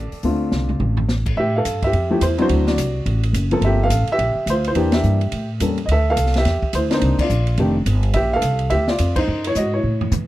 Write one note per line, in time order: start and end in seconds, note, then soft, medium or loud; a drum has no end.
0.00 1.05 A4 medium
0.00 1.04 D5 medium
0.12 muted upright bass stroke soft
0.12 open hi-hat soft
0.23 0.50 D2 medium
0.23 1.02 D3 medium
0.23 1.02 A3 soft
0.23 1.02 C4 soft
0.23 1.03 F4 medium
0.23 open hi-hat soft
0.52 0.78 C2 medium
0.52 snare soft
0.69 mid tom medium
0.80 1.34 A1 medium
0.80 mid tom medium
0.97 floor tom medium
1.09 snare medium
1.26 kick medium
1.26 crash medium
1.37 1.64 A2 medium
1.37 1.56 G4 medium
1.37 1.56 E5 medium
1.56 1.83 A4 medium
1.56 1.85 F5 medium
1.65 1.92 G2 medium
1.65 hi-hat pedal medium
1.65 ride medium
1.82 2.23 E5 medium
1.82 kick medium
1.82 ride soft
1.87 2.10 G4 medium
1.93 2.20 F2 medium
1.93 ride medium
2.10 2.20 F3 medium
2.10 2.21 A3 medium
2.10 2.21 E4 medium
2.10 2.21 G4 medium
2.21 2.49 E2 medium
2.21 2.38 E4 medium
2.21 2.40 C5 medium
2.21 hi-hat pedal soft
2.21 ride medium
2.38 2.76 F#3 medium
2.38 2.76 C4 medium
2.38 2.76 D4 medium
2.38 2.76 E4 medium
2.38 2.68 C5 loud
2.38 ride soft
2.44 2.67 F#4 medium
2.49 2.77 D2 medium
2.49 ride medium
2.67 3.21 F#4 medium
2.67 3.20 D5 medium
2.67 snare medium
2.77 3.05 C2 medium
2.77 hi-hat pedal medium
2.77 ride medium
3.06 3.33 A1 medium
3.06 ride medium
3.23 ride soft
3.33 3.61 F#1 medium
3.33 hi-hat pedal medium
3.33 ride medium
3.51 3.89 F3 medium
3.51 3.89 A#3 medium
3.51 3.89 C4 medium
3.51 3.83 A4 medium
3.51 ride soft
3.61 3.89 G1 medium
3.61 3.83 E5 medium
3.61 ride medium
3.66 3.82 G4 medium
3.84 4.10 A4 medium
3.84 4.09 F5 loud
3.90 4.06 A1 medium
3.90 hi-hat pedal medium
3.90 ride medium
4.07 muted upright bass stroke soft
4.07 ride soft
4.12 4.47 G4 medium
4.12 4.50 E5 loud
4.18 4.35 A#1 medium
4.18 ride medium
4.35 muted upright bass stroke soft
4.46 4.74 D2 medium
4.46 4.66 C5 medium
4.46 hi-hat pedal medium
4.46 ride medium
4.52 4.67 F4 medium
4.64 4.94 C5 medium
4.64 ride soft
4.70 4.93 E4 medium
4.75 5.03 E2 medium
4.75 5.18 E3 medium
4.75 5.18 A#3 medium
4.75 5.18 D4 medium
4.75 4.95 G4 medium
4.75 ride medium
4.92 5.46 E5 medium
4.92 snare medium
4.92 ride medium
4.96 5.47 G4 medium
5.03 5.31 G2 medium
5.03 hi-hat pedal medium
5.21 ride soft
5.32 5.59 A2 medium
5.32 ride medium
5.60 5.88 E2 medium
5.60 5.76 G3 soft
5.60 5.76 A#3 soft
5.60 5.77 C#4 soft
5.60 5.77 A4 soft
5.60 hi-hat pedal medium
5.60 ride medium
5.78 ride soft
5.86 6.16 D2 medium
5.86 5.89 D#5 medium
5.86 ride medium
5.92 6.08 A4 medium
5.92 6.09 E5 medium
6.10 6.36 A4 medium
6.10 6.35 F5 loud
6.17 6.44 C2 medium
6.17 hi-hat pedal medium
6.17 ride medium
6.26 snare soft
6.34 6.75 E5 medium
6.34 snare soft
6.34 ride soft
6.40 6.73 G4 medium
6.45 6.61 E2 medium
6.45 snare soft
6.45 ride medium
6.62 muted upright bass stroke soft
6.62 kick medium
6.73 7.01 D2 medium
6.73 6.93 E4 medium
6.73 6.92 C5 medium
6.73 hi-hat pedal medium
6.73 ride medium
6.90 7.28 A#3 medium
6.90 7.28 C4 medium
6.90 7.27 D4 medium
6.90 6.94 D#4 medium
6.90 7.18 C5 medium
6.90 snare soft
6.90 ride soft
6.96 7.19 D#4 medium
7.01 7.17 C2 medium
7.01 ride medium
7.19 7.72 D5 medium
7.19 muted upright bass stroke soft
7.19 kick medium
7.19 crash medium
7.23 7.73 F4 medium
7.29 7.57 A#1 medium
7.29 hi-hat pedal medium
7.47 ride soft
7.58 7.85 F1 medium
7.58 7.74 D#3 medium
7.58 7.74 A3 medium
7.58 7.74 D4 soft
7.58 7.74 G4 medium
7.58 ride medium
7.86 8.13 G1 medium
7.86 hi-hat pedal medium
7.86 ride medium
8.03 ride soft
8.13 8.41 A#1 medium
8.13 8.33 G4 medium
8.13 8.34 E5 loud
8.13 ride medium
8.33 8.70 A4 medium
8.33 8.72 F5 loud
8.42 8.70 C2 medium
8.42 hi-hat pedal medium
8.42 ride medium
8.59 ride soft
8.70 8.98 D2 medium
8.70 8.87 G4 medium
8.70 8.88 E5 loud
8.70 ride medium
8.88 9.15 F4 medium
8.88 9.14 D5 medium
8.88 snare soft
8.98 9.26 F2 medium
8.98 hi-hat pedal medium
8.98 ride medium
9.16 9.45 D#4 medium
9.16 9.44 C5 medium
9.16 kick medium
9.16 crash medium
9.28 9.55 F#2 loud
9.44 9.56 C#5 medium
9.44 ride medium
9.49 9.56 E4 medium
9.55 9.83 G#2 medium
9.55 9.73 F#4 medium
9.55 9.74 D#5 medium
9.55 hi-hat pedal medium
9.74 10.10 E4 medium
9.74 10.10 C#5 medium
9.83 10.11 A2 medium
10.01 floor tom medium
10.11 10.27 E3 medium
10.11 floor tom medium
10.11 hi-hat pedal medium